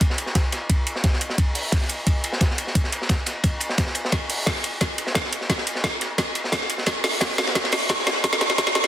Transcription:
0.01 kick, closed hi-hat, ride
0.10 snare
0.18 closed hi-hat, ride
0.26 snare
0.35 kick, snare, closed hi-hat, ride
0.52 snare, closed hi-hat, ride
0.70 kick, closed hi-hat, ride
0.87 closed hi-hat, ride
0.96 snare
1.04 kick, snare, closed hi-hat, ride
1.13 snare
1.21 closed hi-hat, ride
1.30 snare
1.38 kick, closed hi-hat, ride
1.55 closed hi-hat, open hi-hat
1.72 kick, snare, closed hi-hat, ride
1.81 snare
1.89 closed hi-hat, ride
2.07 kick, closed hi-hat, ride
2.24 closed hi-hat, ride
2.32 snare
2.41 kick, snare, closed hi-hat, ride
2.51 snare
2.58 closed hi-hat, ride
2.67 snare
2.75 kick, closed hi-hat, ride
2.84 snare
2.92 closed hi-hat, ride
3.02 snare
3.09 kick, snare, closed hi-hat, ride
3.26 snare, closed hi-hat, ride
3.44 kick, closed hi-hat, ride
3.60 closed hi-hat, ride
3.69 snare
3.78 kick, snare, closed hi-hat, ride
3.86 snare
3.95 closed hi-hat, ride
4.05 snare
4.12 kick, snare, closed hi-hat, ride
4.30 closed hi-hat, open hi-hat
4.46 kick, snare, closed hi-hat, ride
4.56 snare
4.64 closed hi-hat, ride
4.81 kick, snare, closed hi-hat, ride
4.98 closed hi-hat, ride
5.07 snare
5.15 kick, snare, closed hi-hat, ride
5.24 snare
5.33 closed hi-hat, ride
5.41 snare
5.50 kick, snare, closed hi-hat, ride
5.58 snare
5.67 closed hi-hat, ride
5.75 snare
5.84 kick, snare, closed hi-hat, ride
6.01 snare, closed hi-hat, ride
6.18 kick, snare, closed hi-hat, ride
6.35 closed hi-hat, ride
6.44 snare
6.52 kick, snare, closed hi-hat, ride
6.61 snare
6.70 closed hi-hat, ride
6.78 snare
6.86 kick, snare, closed hi-hat, ride
7.04 snare, closed hi-hat, open hi-hat
7.21 kick, snare, closed hi-hat, ride
7.30 snare
7.38 snare, closed hi-hat, ride
7.47 snare, ride
7.55 kick, snare, closed hi-hat, ride
7.64 snare, ride
7.72 snare, closed hi-hat, open hi-hat
7.89 kick, snare, closed hi-hat, ride
8.00 snare
8.07 snare, closed hi-hat, ride
8.16 snare
8.24 kick, snare, closed hi-hat, ride
8.33 snare
8.41 snare, closed hi-hat, ride
8.50 snare
8.58 kick, snare, closed hi-hat, ride
8.67 snare
8.75 snare, closed hi-hat, ride
8.84 snare

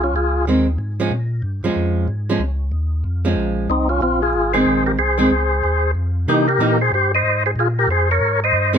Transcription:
Already playing: C2
0.04 C#4 F4
0.14 C#2 F4 G#4
0.46 D#2 D#3 G#3 C4
0.78 G#2
1.00 F3 G#3 C#4
1.11 A#2
1.42 G2
1.63 G2 F3 G#3 C#4
1.76 F2
2.08 G#2
2.29 F3 G#3 C#4
2.39 C#2
2.72 D#2
3.04 F2
3.25 F3 G#3 C#4
3.36 A#1
3.69 C2 C4 D#4
3.89 C#4 F4
4.01 A#1 C4 F4
4.22 F4 G#4
4.33 G#1
4.54 D#3 G#3 C4 G#4 C5
4.67 A#1
4.86 G4 A#4
4.98 C2 G#4 C5
5.18 D#3 G#3 C4
5.31 C#2
5.64 D#2
5.95 F2
6.27 C3 E3 A#3 D#4 G4
6.48 G4 A#4
6.59 A#2 E3 A#3 D#4
6.81 G#4 C5
6.92 G2 G4 C5
7.15 C5 D#5
7.23 G#2
7.46 G#4 C5
7.56 A#2 G#4
7.60 F4
7.79 G4 A#4
7.88 F2 C5
7.92 G#4
8.11 A#4 C#5
8.21 G#2
8.44 C5 D#5
8.53 G2
8.73 D#3 G#3 C4

